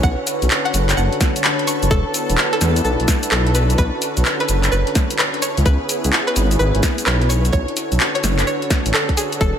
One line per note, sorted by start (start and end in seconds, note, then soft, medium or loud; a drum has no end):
0.00 0.16 B1 loud
0.00 2.58 D3 medium
0.00 1.87 C#4 medium
0.00 5.38 D4 medium
0.00 0.42 E4 medium
0.00 1.89 F#4 medium
0.00 5.38 A4 medium
0.00 9.59 B4 medium
0.00 1.91 C#5 medium
0.00 0.23 F#5 loud
0.00 kick loud
0.00 shaker soft
0.17 5.42 A5 medium
0.27 open hi-hat loud
0.27 shaker medium
0.42 0.49 B1 loud
0.42 closed hi-hat medium
0.42 shaker soft
0.50 clap loud
0.50 shaker soft
0.65 0.82 F#5 medium
0.65 closed hi-hat medium
0.74 0.94 F#1 loud
0.74 open hi-hat medium
0.74 shaker medium
0.89 clap medium
0.89 closed hi-hat medium
0.89 shaker soft
0.97 1.09 F#1 loud
0.97 1.13 F#5 medium
0.97 shaker soft
1.13 closed hi-hat soft
1.21 kick loud
1.21 snare medium
1.21 open hi-hat loud
1.21 shaker medium
1.36 closed hi-hat medium
1.36 shaker soft
1.44 1.59 B5 medium
1.44 clap loud
1.44 shaker soft
1.59 closed hi-hat soft
1.67 1.83 C#6 medium
1.67 open hi-hat medium
1.67 shaker medium
1.82 1.89 F#1 medium
1.82 closed hi-hat medium
1.82 shaker soft
1.90 2.03 E1 loud
1.90 3.53 B3 medium
1.90 4.25 E4 medium
1.90 5.39 F#4 medium
1.90 2.11 A4 loud
1.90 kick loud
1.90 shaker soft
2.14 open hi-hat loud
2.14 shaker medium
2.29 2.36 E1 loud
2.29 closed hi-hat medium
2.29 shaker soft
2.38 clap loud
2.38 shaker soft
2.53 2.70 A4 loud
2.53 closed hi-hat medium
2.61 2.81 E2 medium
2.61 3.55 D5 medium
2.61 snare medium
2.61 open hi-hat medium
2.61 shaker medium
2.76 closed hi-hat medium
2.76 shaker soft
2.84 2.97 B1 loud
2.84 3.00 A4 medium
2.84 shaker soft
3.00 3.06 B1 medium
3.00 closed hi-hat medium
3.08 kick loud
3.08 snare medium
3.08 open hi-hat loud
3.08 shaker medium
3.23 closed hi-hat medium
3.23 shaker soft
3.31 3.76 B1 medium
3.31 3.47 A4 medium
3.31 clap loud
3.31 shaker soft
3.47 closed hi-hat soft
3.55 5.43 D3 medium
3.55 9.37 C#4 medium
3.55 3.70 B4 medium
3.55 open hi-hat medium
3.55 shaker medium
3.70 closed hi-hat medium
3.70 shaker soft
3.76 3.90 B1 loud
3.76 3.98 B4 loud
3.76 9.41 C#5 medium
3.76 kick loud
3.76 shaker soft
4.02 open hi-hat loud
4.02 shaker medium
4.17 4.24 B1 medium
4.17 closed hi-hat medium
4.17 shaker soft
4.25 clap loud
4.25 shaker soft
4.40 4.57 B4 loud
4.40 closed hi-hat medium
4.49 4.69 F#1 loud
4.49 open hi-hat medium
4.49 shaker medium
4.64 clap medium
4.64 closed hi-hat medium
4.64 shaker soft
4.72 4.84 F#1 medium
4.72 4.87 B4 medium
4.72 shaker soft
4.87 closed hi-hat medium
4.95 kick loud
4.95 snare medium
4.95 open hi-hat loud
4.95 shaker medium
5.10 closed hi-hat medium
5.10 shaker soft
5.19 5.35 B4 medium
5.19 clap loud
5.19 shaker soft
5.34 closed hi-hat soft
5.42 7.28 B3 medium
5.42 7.28 E4 medium
5.42 8.17 E4 medium
5.42 7.28 G#4 medium
5.42 5.58 C#5 medium
5.42 open hi-hat medium
5.42 shaker medium
5.57 5.64 C#2 medium
5.57 closed hi-hat medium
5.57 shaker soft
5.65 5.78 C#2 loud
5.65 5.86 B4 loud
5.65 kick loud
5.65 shaker soft
5.89 open hi-hat loud
5.89 shaker medium
6.04 6.11 C#2 medium
6.04 closed hi-hat medium
6.04 shaker soft
6.13 clap loud
6.13 shaker soft
6.27 6.45 B4 medium
6.27 7.30 G#5 medium
6.27 closed hi-hat medium
6.36 6.56 G#1 medium
6.36 open hi-hat loud
6.36 shaker medium
6.51 closed hi-hat medium
6.51 shaker soft
6.59 6.72 G#1 loud
6.59 6.75 B4 medium
6.59 shaker soft
6.75 6.81 G#1 medium
6.75 closed hi-hat medium
6.83 kick loud
6.83 snare medium
6.83 open hi-hat loud
6.83 shaker medium
6.98 closed hi-hat medium
6.98 shaker soft
7.06 7.51 B1 medium
7.06 7.22 B4 medium
7.06 clap loud
7.06 shaker soft
7.22 closed hi-hat soft
7.29 9.59 D3 medium
7.29 9.59 D4 medium
7.29 9.59 F#4 medium
7.29 9.59 A4 medium
7.29 7.45 C#5 medium
7.29 open hi-hat medium
7.29 shaker medium
7.45 closed hi-hat medium
7.45 shaker soft
7.53 7.65 B1 loud
7.53 7.73 C#5 loud
7.53 kick loud
7.53 shaker soft
7.68 closed hi-hat soft
7.77 open hi-hat loud
7.77 shaker medium
7.92 7.98 B1 loud
7.92 closed hi-hat medium
7.92 shaker soft
8.00 clap loud
8.00 shaker soft
8.15 8.32 C#5 loud
8.15 closed hi-hat medium
8.23 8.44 F#1 medium
8.23 9.59 A5 medium
8.23 snare medium
8.23 open hi-hat loud
8.23 shaker medium
8.39 clap medium
8.39 closed hi-hat medium
8.39 shaker soft
8.47 8.63 C#5 medium
8.47 shaker soft
8.62 closed hi-hat medium
8.70 kick loud
8.70 snare medium
8.70 open hi-hat loud
8.70 shaker medium
8.86 8.92 A1 medium
8.86 closed hi-hat medium
8.86 shaker soft
8.94 9.09 A4 medium
8.94 clap loud
8.94 shaker soft
9.09 kick medium
9.09 closed hi-hat soft
9.17 9.33 G#4 medium
9.17 open hi-hat loud
9.17 shaker medium
9.32 closed hi-hat medium
9.32 shaker soft
9.41 9.53 E1 loud
9.41 9.59 B3 medium
9.41 9.59 E4 medium
9.41 9.59 A4 loud
9.41 kick loud
9.41 shaker soft